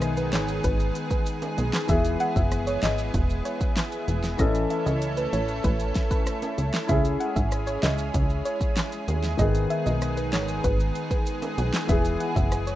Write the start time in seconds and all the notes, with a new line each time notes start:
Already playing: B1 D#3 G#3 B3 G#4
0.01 cross-stick, closed hi-hat, maracas
0.17 B4, closed hi-hat, maracas
0.33 G#1 C#5, snare, clap, closed hi-hat, maracas
0.48 maracas
0.64 G#1 B4, kick, closed hi-hat, maracas
0.80 maracas
0.95 closed hi-hat, maracas
1.10 B4, kick, maracas
1.26 closed hi-hat, maracas
1.42 closed hi-hat, high timbale, maracas
1.58 B1, closed hi-hat, maracas
1.73 snare, clap, maracas
1.87 E1 E3 B3 E4 G#4 E5, kick, closed hi-hat, maracas
2.05 closed hi-hat, maracas
2.20 F#5, closed hi-hat
2.36 F#1 E5, kick, maracas
2.52 cross-stick, closed hi-hat, maracas
2.67 C#5, closed hi-hat, maracas
2.83 G#1 D#5, snare, clap, closed hi-hat, maracas
2.98 maracas
3.14 E1, kick, closed hi-hat, maracas
3.30 maracas
3.45 C#5, closed hi-hat, maracas
3.61 kick, maracas
3.76 snare, clap, closed hi-hat, maracas
3.92 closed hi-hat, maracas
4.08 E1, closed hi-hat, maracas
4.24 snare, maracas
4.37 A1 E3 A3 C#4 A4 D#5, kick, closed hi-hat, maracas
4.55 closed hi-hat, maracas
4.70 E5, closed hi-hat
4.86 C#2 D#5, maracas
5.02 closed hi-hat, maracas
5.17 B4, closed hi-hat, maracas
5.33 A1 C#5, closed hi-hat, maracas
5.48 maracas
5.64 A1 B4, kick, closed hi-hat, maracas
5.80 closed hi-hat, maracas
5.95 kick, snare, closed hi-hat, maracas
6.11 B4, kick, maracas
6.26 cross-stick, closed hi-hat, maracas
6.42 closed hi-hat, high timbale, maracas
6.58 C#2, closed hi-hat, maracas
6.74 snare, clap, maracas
6.87 C#2 G#3 C#4 E4 G#4 E5, kick, closed hi-hat, maracas
7.05 closed hi-hat, maracas
7.20 F#5, closed hi-hat
7.36 G#1 E5, kick, maracas
7.51 cross-stick, closed hi-hat, maracas
7.67 C#5, closed hi-hat, maracas
7.83 C#2 D#5, snare, clap, closed hi-hat, maracas
7.98 maracas
8.14 C#2, kick, closed hi-hat, maracas
8.30 maracas
8.45 C#5, closed hi-hat, maracas
8.61 kick, maracas
8.76 snare, clap, closed hi-hat, maracas
8.92 closed hi-hat, maracas
9.08 D#2, closed hi-hat, maracas
9.24 snare, maracas
9.37 G#1 D#3 B3 G#4 D#5, kick, closed hi-hat, maracas
9.55 closed hi-hat, maracas
9.70 E5, closed hi-hat
9.86 B1 D#5, maracas
10.02 cross-stick, closed hi-hat, maracas
10.17 B4, closed hi-hat, maracas
10.33 G#1 C#5, snare, clap, closed hi-hat, maracas
10.48 maracas
10.64 G#1 B4, kick, closed hi-hat, maracas
10.80 maracas
10.95 closed hi-hat, maracas
11.11 B4, kick, maracas
11.26 closed hi-hat, maracas
11.42 closed hi-hat, high timbale, maracas
11.58 B1, closed hi-hat, maracas
11.74 snare, clap, maracas
11.87 E1 E3 B3 G#4 E5, kick, closed hi-hat, maracas
12.05 closed hi-hat, maracas
12.20 F#5, closed hi-hat
12.36 F#1 E5, kick, maracas
12.52 cross-stick, closed hi-hat, maracas
12.67 C#5, closed hi-hat, maracas